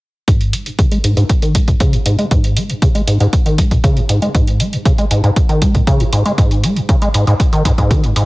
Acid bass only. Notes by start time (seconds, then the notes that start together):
0.28 G#2
0.53 G#3
0.66 G#2
0.79 C#3
0.92 G#3
1.04 G#2
1.17 G#2
1.42 D#3
1.55 G#3
1.68 G#2
1.80 C#3
1.93 G#2
2.06 G#2
2.19 G#3
2.31 G#2
2.57 G#3
2.69 G#2
2.82 C#3
2.95 G#3
3.07 G#2
3.20 G#2
3.46 D#3
3.58 G#3
3.71 G#2
3.84 C#3
3.97 G#2
4.09 G#2
4.22 G#3
4.35 G#2
4.60 G#3
4.73 G#2
4.85 C#3
4.98 G#3
5.11 G#2
5.24 G#2
5.49 D#3
5.62 G#3
5.75 G#2
5.87 C#3
6.00 G#2
6.13 G#2
6.26 G#3
6.38 G#2
6.64 G#3
6.76 G#2
6.89 C#3
7.02 G#3
7.14 G#2
7.27 G#2
7.53 D#3
7.65 G#2
7.78 G#2
7.91 D#3
8.04 G#2
8.16 G#2